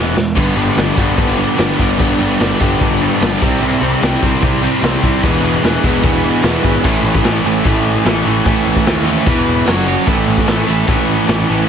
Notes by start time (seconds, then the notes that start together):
Already playing: E1 E2 B2 E3 G#3 B3
0.15 E1 E2 B2 E3 G#3, snare
0.35 G1 G2 D3 G3 B3 D4 G4, kick, crash
0.55 G1 G2 D3 G3 B3 D4, crash
0.76 G1 G2 D3 G3 B3 D4, snare, crash
0.96 G1 G2 D3 G3 B3 D4 G4, kick, crash
1.16 G1 G2 D3 G3 B3 D4, kick, crash
1.37 G2 D3 G3 B3 D4, crash
1.57 G1 G2 D3 G3 B3 D4 G4, snare, crash
1.78 G1 G2 D3 G3 B3 D4, kick, crash
1.99 G1 G2 D3 G3 B3 D4 G4, kick, crash
2.18 G1 G2 D3 G3 B3 D4, crash
2.40 G1 G2 D3 G3 B3 D4, snare, crash
2.59 G1 G2 D3 G3 B3 D4 G4, kick, crash
2.80 G1 G2 D3 G3 B3 D4, kick, crash
3.01 G2 D3 G3 B3 D4, crash
3.21 G1 G2 D3 G3 B3 D4 G4, snare, crash
3.41 C2 C3 G3 C4 E4 G4, kick, crash
3.61 C2 C3 G3 C4 E4, crash
3.81 C2 C3 G3 C4 E4, crash
4.02 C2 C3 G3 C4 E4 G4, snare, crash
4.22 C2 C3 G3 C4 E4, kick, crash
4.41 C2 C3 G3 C4 E4, kick, crash
4.61 C3 G3 C4 E4 G4, crash
4.81 C2 C3 G3 C4 E4, snare, crash
5.02 C2 C3 G3 C4 E4, kick, crash
5.22 E1 E2 B2 E3 G#3 B3 D4 E4 G#4, kick, crash
5.42 E1 E2 B2 E3 G#3 B3 E4, crash
5.63 E1 E2 B2 E3 G#3 B3 E4, snare, crash
5.82 E1 E2 B2 E3 G#3 B3 D4 E4 G#4, kick, crash
6.03 E1 E2 B2 E3 G#3 B3 E4, kick, crash
6.23 E2 B2 E3 G#3 B3 E4, crash
6.43 E1 E2 B2 E3 G#3 B3 D4 E4 G#4, snare, crash
6.64 G#1 E2 B2 E3 G#3 B3 E4, kick, crash
6.84 A1 A2 E3 A3 C#4 E4 A4, kick, crash
7.04 A1
7.14 kick
7.24 A1 A2 E3 A3 C#4 E4, snare, crash
7.45 A1 A2 E3 A3 C#4 E4 A4
7.65 A1 A2 E3 A3 C#4 E4, kick, crash
8.05 A1 A2 E3 A3 C#4 E4, snare, crash
8.25 A1 A2 E3 A3 C#4 E4
8.45 A1 A2 E3 A3 C#4 E4 A4, kick, crash
8.67 A1
8.76 kick
8.86 D#2 A2 E3 A3 C#4 E4, snare, crash
9.06 A2 E3 A3 C#4 E4 A4
9.26 E1 E2 B2 E3 B3 E4 B4, kick, crash
9.47 E1
9.66 F#1 F#2 C#3 F#3 C#4 F#4 C#5, snare, crash
9.87 F#2 C#3 F#3 C#4 F#4 C#5
10.06 A1 A2 E3 A3 C#4 E4 A4, kick, crash
10.28 A1
10.37 kick
10.47 A1 A2 E3 A3 C#4 E4 A4, snare, crash
10.67 A1 A2 E3 A3 C#4 E4 A4
10.86 A1 A2 E3 A3 C#4 E4 A4, kick, crash
11.27 A1 A2 E3 A3 C#4 E4 A4, snare, crash
11.47 A1 A2 E3 A3 C#4 E4 A4